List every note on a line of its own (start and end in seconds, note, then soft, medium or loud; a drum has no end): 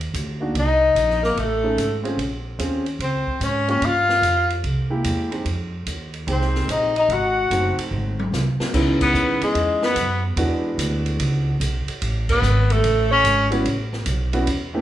0.00 0.13 D#2 medium
0.00 ride soft
0.14 0.54 D2 medium
0.14 hi-hat pedal soft
0.14 ride medium
0.40 0.54 A#3 medium
0.40 0.54 D4 medium
0.40 0.54 D#4 soft
0.40 0.54 F#4 medium
0.54 0.95 C2 medium
0.54 1.20 D#5 medium
0.54 ride medium
0.59 1.21 D#4 medium
0.95 1.35 A#1 medium
0.95 hi-hat pedal soft
0.95 ride medium
1.10 snare soft
1.23 1.41 A#3 medium
1.23 1.39 A#4 medium
1.23 snare soft
1.37 1.76 A1 medium
1.37 2.06 A3 medium
1.37 2.05 A4 medium
1.37 ride soft
1.63 1.76 A3 medium
1.63 1.76 C#4 medium
1.63 1.77 D#4 soft
1.63 1.77 G#4 medium
1.77 2.17 G#1 medium
1.77 hi-hat pedal soft
1.77 ride medium
2.04 2.17 C4 medium
2.04 2.17 C#4 medium
2.04 2.17 F4 medium
2.04 2.18 G#4 medium
2.04 ride soft
2.17 2.58 A#1 medium
2.17 ride soft
2.59 2.98 D#2 medium
2.59 2.84 C4 medium
2.59 2.84 C#4 soft
2.59 2.84 F4 soft
2.59 2.84 G#4 medium
2.59 hi-hat pedal soft
2.59 ride medium
2.86 ride soft
2.99 3.25 C#2 medium
2.99 3.46 C5 medium
2.99 ride medium
3.04 3.46 C4 medium
3.27 muted upright bass stroke soft
3.27 kick soft
3.40 3.81 G#2 medium
3.40 3.70 C#4 medium
3.40 3.70 C#5 medium
3.40 hi-hat pedal soft
3.40 ride soft
3.68 3.81 A#3 medium
3.68 3.81 C#4 medium
3.68 3.87 C#4 medium
3.68 3.81 F4 medium
3.68 3.81 G4 medium
3.68 3.86 C#5 medium
3.68 ride soft
3.81 4.21 G2 medium
3.81 4.52 F5 medium
3.81 ride medium
3.85 4.52 F4 medium
4.09 snare soft
4.22 4.62 F2 medium
4.22 hi-hat pedal medium
4.22 ride medium
4.50 ride soft
4.64 5.04 C2 medium
4.64 ride soft
4.90 5.29 G#3 medium
4.90 5.29 A#3 medium
4.90 5.29 E4 medium
4.90 5.29 G4 medium
5.04 5.44 E2 medium
5.04 hi-hat pedal soft
5.04 ride medium
5.31 5.44 G#3 medium
5.31 5.45 C4 soft
5.31 5.45 D#4 soft
5.31 5.45 G4 medium
5.31 ride soft
5.45 5.85 F2 medium
5.45 ride medium
5.86 6.27 D#2 medium
5.86 hi-hat pedal medium
5.86 ride medium
6.14 ride soft
6.27 6.67 C2 medium
6.27 6.90 G#3 medium
6.27 6.90 C4 soft
6.27 6.91 D#4 medium
6.27 6.91 G4 medium
6.27 6.72 C5 medium
6.27 ride medium
6.31 6.73 C4 medium
6.41 snare soft
6.55 snare soft
6.68 7.08 A#1 medium
6.68 6.96 D#5 medium
6.68 hi-hat pedal soft
6.68 ride medium
6.72 6.98 D#4 medium
6.96 7.14 D#4 medium
6.96 7.13 D#5 medium
6.96 ride soft
7.09 7.49 G#1 medium
7.09 7.79 F#5 medium
7.09 ride soft
7.13 7.80 F#4 medium
7.50 7.76 F#1 medium
7.50 8.14 A3 soft
7.50 8.14 C4 soft
7.50 8.14 D#4 soft
7.50 8.14 F#4 medium
7.50 hi-hat pedal soft
7.50 ride medium
7.78 muted upright bass stroke soft
7.78 ride medium
7.91 8.31 G#1 medium
7.91 mid tom soft
8.19 high tom medium
8.32 8.58 C2 medium
8.32 snare medium
8.32 hi-hat pedal medium
8.60 muted upright bass stroke soft
8.60 snare medium
8.73 9.13 C#2 medium
8.73 9.88 G#3 medium
8.73 9.88 B3 medium
8.73 9.89 C#4 medium
8.73 9.89 D#4 medium
8.73 9.89 E4 medium
8.73 kick medium
8.73 crash medium
9.01 9.40 B3 medium
9.01 9.40 B4 medium
9.01 kick medium
9.01 crash medium
9.14 9.40 D#2 medium
9.14 hi-hat pedal soft
9.41 9.81 G#3 medium
9.41 9.81 G#4 soft
9.41 muted upright bass stroke soft
9.41 ride soft
9.55 9.95 E2 medium
9.55 ride medium
9.82 10.22 B3 medium
9.82 10.22 B4 medium
9.82 snare medium
9.96 10.36 F#2 medium
9.96 hi-hat pedal medium
9.96 ride medium
10.36 10.77 E2 medium
10.36 11.52 G#3 medium
10.36 11.52 B3 medium
10.36 11.52 D4 medium
10.36 11.52 E4 medium
10.36 11.53 F#4 medium
10.36 ride medium
10.78 11.18 D2 medium
10.78 hi-hat pedal medium
10.78 ride medium
11.06 ride soft
11.19 11.59 C#2 medium
11.19 ride medium
11.60 11.86 B1 medium
11.60 hi-hat pedal medium
11.60 ride medium
11.88 muted upright bass stroke soft
11.88 ride soft
12.02 12.42 A1 medium
12.02 ride medium
12.29 12.74 B3 medium
12.29 12.72 B4 medium
12.29 kick medium
12.29 crash medium
12.42 12.82 G#1 medium
12.42 hi-hat pedal medium
12.70 13.12 A3 medium
12.70 13.11 A4 medium
12.70 ride soft
12.83 13.23 A1 medium
12.83 ride medium
13.11 13.50 C#4 loud
13.11 13.49 C#5 medium
13.24 13.64 G#1 medium
13.24 hi-hat pedal medium
13.24 ride medium
13.51 13.64 G3 medium
13.51 13.64 B3 medium
13.51 13.64 C#4 medium
13.51 13.64 E4 medium
13.51 13.64 F#4 medium
13.51 ride soft
13.66 14.05 A1 medium
13.66 ride medium
13.93 snare soft
14.06 14.46 B1 medium
14.06 hi-hat pedal medium
14.06 ride medium
14.33 14.46 G3 medium
14.33 14.46 B3 medium
14.33 14.46 C#4 medium
14.33 14.46 E4 medium
14.33 14.46 F#4 medium
14.33 ride soft
14.47 14.81 E2 medium
14.47 ride medium
14.74 14.81 A3 medium
14.74 14.81 B3 medium
14.74 14.81 C#4 medium
14.74 14.81 E4 medium
14.74 14.81 G4 medium